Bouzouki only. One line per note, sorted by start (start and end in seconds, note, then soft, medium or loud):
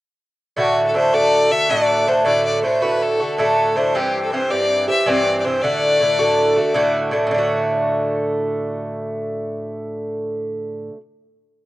0.57 0.93 A2 medium
0.57 0.94 D3 medium
0.57 0.94 A3 medium
0.57 0.95 F#4 medium
0.94 1.13 A2 soft
0.94 1.13 D3 medium
0.94 1.12 A3 medium
0.94 1.11 F#4 medium
1.13 1.52 A2 soft
1.13 1.51 D3 medium
1.13 1.51 A3 medium
1.13 1.49 F#4 medium
1.51 1.69 D3 soft
1.51 1.70 A3 soft
1.51 1.69 F#4 soft
1.69 2.06 A2 medium
1.69 2.06 D3 medium
1.69 2.07 A3 medium
1.69 2.08 F#4 medium
2.07 2.24 A2 medium
2.07 2.24 D3 medium
2.07 2.25 A3 medium
2.07 2.25 F#4 medium
2.25 2.62 A2 medium
2.25 2.63 D3 medium
2.25 2.64 A3 medium
2.25 2.64 F#4 medium
2.63 2.81 A2 soft
2.63 2.82 D3 soft
2.63 2.81 A3 medium
2.63 2.81 F#4 medium
2.82 3.21 A2 soft
2.82 3.21 D3 soft
2.82 3.20 A3 soft
2.82 3.18 F#4 medium
3.20 3.38 D3 soft
3.20 3.38 A3 soft
3.20 3.38 F#4 soft
3.38 3.74 A2 medium
3.38 3.75 D3 medium
3.38 3.76 A3 medium
3.38 3.77 F#4 medium
3.76 3.94 A2 soft
3.76 3.94 D3 medium
3.76 3.95 A3 medium
3.76 3.95 F#4 medium
3.95 4.31 G2 medium
3.95 4.32 E3 medium
3.95 4.32 C4 medium
3.95 4.33 G4 medium
4.32 4.50 G2 soft
4.32 4.50 E3 medium
4.32 4.50 C4 medium
4.32 4.49 G4 medium
4.50 4.89 G2 medium
4.50 4.89 E3 medium
4.50 4.88 C4 medium
4.50 4.87 G4 medium
4.88 5.06 E3 soft
4.88 5.07 C4 soft
4.88 5.06 G4 soft
5.06 5.44 G2 medium
5.06 5.45 E3 medium
5.06 5.45 C4 medium
5.06 5.45 G4 medium
5.45 5.62 G2 medium
5.45 5.63 E3 soft
5.45 5.63 C4 medium
5.45 5.64 G4 medium
5.63 5.99 A2 medium
5.63 6.01 D3 medium
5.63 6.02 A3 medium
5.63 6.02 F#4 medium
6.00 6.18 A2 medium
6.00 6.19 D3 medium
6.00 6.18 A3 medium
6.00 6.17 F#4 medium
6.19 6.57 A2 medium
6.19 6.58 D3 medium
6.19 6.57 A3 medium
6.19 6.56 F#4 medium
6.56 6.73 D3 soft
6.56 6.74 A3 soft
6.56 6.74 F#4 soft
6.74 7.10 A2 medium
6.74 7.12 D3 medium
6.74 7.12 A3 medium
6.74 7.13 F#4 medium
7.11 7.25 A2 medium
7.11 7.30 D3 medium
7.11 7.30 A3 medium
7.11 7.31 F#4 medium
7.27 10.89 A2 medium
7.31 10.93 D3 medium
7.31 10.97 A3 medium
7.38 11.00 F#4 medium